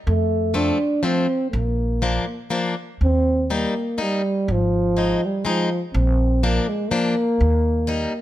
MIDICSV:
0, 0, Header, 1, 4, 480
1, 0, Start_track
1, 0, Key_signature, -3, "major"
1, 0, Tempo, 489396
1, 63, Time_signature, 3, 2, 24, 8
1, 8057, End_track
2, 0, Start_track
2, 0, Title_t, "Euphonium"
2, 0, Program_c, 0, 58
2, 79, Note_on_c, 0, 57, 96
2, 547, Note_on_c, 0, 62, 90
2, 561, Note_off_c, 0, 57, 0
2, 1016, Note_on_c, 0, 60, 94
2, 1031, Note_off_c, 0, 62, 0
2, 1470, Note_off_c, 0, 60, 0
2, 1476, Note_on_c, 0, 58, 69
2, 2405, Note_off_c, 0, 58, 0
2, 2983, Note_on_c, 0, 60, 111
2, 3417, Note_off_c, 0, 60, 0
2, 3482, Note_on_c, 0, 58, 80
2, 3940, Note_on_c, 0, 55, 98
2, 3955, Note_off_c, 0, 58, 0
2, 4427, Note_on_c, 0, 53, 103
2, 4442, Note_off_c, 0, 55, 0
2, 5151, Note_on_c, 0, 55, 80
2, 5166, Note_off_c, 0, 53, 0
2, 5352, Note_off_c, 0, 55, 0
2, 5358, Note_on_c, 0, 53, 85
2, 5694, Note_off_c, 0, 53, 0
2, 5821, Note_on_c, 0, 60, 83
2, 6318, Note_on_c, 0, 58, 91
2, 6333, Note_off_c, 0, 60, 0
2, 6555, Note_on_c, 0, 56, 73
2, 6570, Note_off_c, 0, 58, 0
2, 6764, Note_on_c, 0, 58, 102
2, 6779, Note_off_c, 0, 56, 0
2, 8057, Note_off_c, 0, 58, 0
2, 8057, End_track
3, 0, Start_track
3, 0, Title_t, "Steel-string acoustic guitar"
3, 0, Program_c, 1, 25
3, 530, Note_on_c, 1, 57, 60
3, 533, Note_on_c, 1, 53, 75
3, 540, Note_on_c, 1, 60, 68
3, 758, Note_off_c, 1, 57, 0
3, 761, Note_off_c, 1, 53, 0
3, 762, Note_off_c, 1, 60, 0
3, 1008, Note_on_c, 1, 53, 75
3, 1012, Note_on_c, 1, 57, 54
3, 1020, Note_on_c, 1, 60, 58
3, 1236, Note_off_c, 1, 57, 0
3, 1237, Note_off_c, 1, 60, 0
3, 1238, Note_off_c, 1, 53, 0
3, 1981, Note_on_c, 1, 53, 72
3, 1987, Note_on_c, 1, 58, 65
3, 1987, Note_on_c, 1, 62, 58
3, 2202, Note_off_c, 1, 53, 0
3, 2203, Note_off_c, 1, 62, 0
3, 2205, Note_off_c, 1, 58, 0
3, 2456, Note_on_c, 1, 58, 69
3, 2461, Note_on_c, 1, 53, 68
3, 2466, Note_on_c, 1, 62, 76
3, 2688, Note_off_c, 1, 58, 0
3, 2691, Note_off_c, 1, 53, 0
3, 2693, Note_off_c, 1, 62, 0
3, 3436, Note_on_c, 1, 55, 68
3, 3440, Note_on_c, 1, 63, 74
3, 3443, Note_on_c, 1, 58, 64
3, 3662, Note_off_c, 1, 63, 0
3, 3663, Note_off_c, 1, 55, 0
3, 3665, Note_off_c, 1, 58, 0
3, 3902, Note_on_c, 1, 58, 56
3, 3905, Note_on_c, 1, 63, 69
3, 3908, Note_on_c, 1, 55, 65
3, 4132, Note_off_c, 1, 63, 0
3, 4133, Note_off_c, 1, 58, 0
3, 4136, Note_off_c, 1, 55, 0
3, 4870, Note_on_c, 1, 56, 80
3, 4875, Note_on_c, 1, 60, 56
3, 4883, Note_on_c, 1, 63, 57
3, 5101, Note_off_c, 1, 56, 0
3, 5102, Note_off_c, 1, 60, 0
3, 5103, Note_off_c, 1, 63, 0
3, 5343, Note_on_c, 1, 56, 65
3, 5351, Note_on_c, 1, 60, 57
3, 5356, Note_on_c, 1, 63, 71
3, 5575, Note_off_c, 1, 56, 0
3, 5577, Note_off_c, 1, 60, 0
3, 5581, Note_off_c, 1, 63, 0
3, 6310, Note_on_c, 1, 53, 72
3, 6311, Note_on_c, 1, 58, 59
3, 6313, Note_on_c, 1, 62, 85
3, 6531, Note_off_c, 1, 58, 0
3, 6533, Note_off_c, 1, 53, 0
3, 6533, Note_off_c, 1, 62, 0
3, 6780, Note_on_c, 1, 53, 66
3, 6782, Note_on_c, 1, 58, 57
3, 6782, Note_on_c, 1, 62, 73
3, 7005, Note_off_c, 1, 58, 0
3, 7007, Note_off_c, 1, 53, 0
3, 7007, Note_off_c, 1, 62, 0
3, 7721, Note_on_c, 1, 55, 80
3, 7728, Note_on_c, 1, 58, 68
3, 7734, Note_on_c, 1, 63, 86
3, 7964, Note_off_c, 1, 55, 0
3, 7965, Note_off_c, 1, 58, 0
3, 7969, Note_off_c, 1, 63, 0
3, 8057, End_track
4, 0, Start_track
4, 0, Title_t, "Upright bass"
4, 0, Program_c, 2, 32
4, 68, Note_on_c, 2, 41, 94
4, 682, Note_off_c, 2, 41, 0
4, 1503, Note_on_c, 2, 34, 94
4, 2124, Note_off_c, 2, 34, 0
4, 2951, Note_on_c, 2, 39, 83
4, 3576, Note_off_c, 2, 39, 0
4, 4397, Note_on_c, 2, 32, 90
4, 5020, Note_off_c, 2, 32, 0
4, 5830, Note_on_c, 2, 34, 102
4, 6446, Note_off_c, 2, 34, 0
4, 7263, Note_on_c, 2, 39, 93
4, 7895, Note_off_c, 2, 39, 0
4, 8057, End_track
0, 0, End_of_file